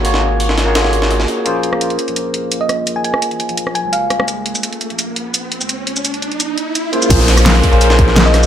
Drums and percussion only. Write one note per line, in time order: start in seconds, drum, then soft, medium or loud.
0.05 closed hi-hat medium
0.14 snare soft
0.40 closed hi-hat medium
0.49 snare soft
0.58 snare soft
0.58 closed hi-hat medium
0.75 snare loud
0.75 closed hi-hat medium
0.84 snare soft
0.93 closed hi-hat medium
1.02 snare medium
1.11 closed hi-hat medium
1.20 snare soft
1.28 closed hi-hat medium
1.46 closed hi-hat medium
1.63 closed hi-hat medium
1.73 cross-stick soft
1.81 closed hi-hat medium
1.90 closed hi-hat soft
1.99 closed hi-hat medium
2.08 closed hi-hat soft
2.16 closed hi-hat medium
2.34 closed hi-hat medium
2.52 closed hi-hat loud
2.69 cross-stick soft
2.69 closed hi-hat medium
2.87 closed hi-hat medium
3.04 closed hi-hat medium
3.14 cross-stick soft
3.22 closed hi-hat medium
3.31 closed hi-hat soft
3.40 closed hi-hat medium
3.49 closed hi-hat soft
3.57 closed hi-hat loud
3.67 cross-stick soft
3.75 closed hi-hat medium
3.93 closed hi-hat medium
4.10 cross-stick soft
4.10 closed hi-hat medium
4.20 cross-stick medium
4.28 closed hi-hat medium
4.28 shaker soft
4.46 closed hi-hat medium
4.55 shaker medium
4.63 closed hi-hat medium
4.63 shaker soft
4.73 closed hi-hat soft
4.81 closed hi-hat medium
4.81 shaker soft
4.90 closed hi-hat soft
4.99 closed hi-hat medium
4.99 shaker soft
5.16 closed hi-hat medium
5.34 closed hi-hat medium
5.34 shaker soft
5.52 closed hi-hat medium
5.61 shaker medium
5.69 closed hi-hat medium
5.69 shaker soft
5.87 closed hi-hat medium
5.96 shaker medium
6.05 closed hi-hat medium
6.05 shaker soft
6.14 closed hi-hat soft
6.22 closed hi-hat medium
6.22 shaker soft
6.32 closed hi-hat soft
6.40 closed hi-hat medium
6.40 shaker soft
6.58 closed hi-hat medium
6.75 closed hi-hat medium
6.75 shaker soft
6.93 closed hi-hat medium
7.02 shaker medium
7.10 kick loud
7.10 closed hi-hat loud
7.10 closed hi-hat medium
7.10 crash loud
7.10 shaker medium
7.20 snare soft
7.28 snare medium
7.28 closed hi-hat medium
7.28 shaker soft
7.37 cross-stick medium
7.37 shaker medium
7.46 snare loud
7.46 closed hi-hat medium
7.46 shaker soft
7.55 snare soft
7.55 closed hi-hat soft
7.63 kick medium
7.63 closed hi-hat medium
7.73 closed hi-hat soft
7.81 closed hi-hat medium
7.81 closed hi-hat loud
7.81 shaker soft
7.90 snare medium
7.90 shaker soft
7.99 kick loud
7.99 closed hi-hat medium
8.08 snare soft
8.16 snare loud
8.16 closed hi-hat medium
8.16 closed hi-hat loud
8.16 shaker soft
8.26 snare soft
8.34 cross-stick soft
8.34 snare soft
8.34 closed hi-hat medium
8.34 shaker soft
8.43 shaker medium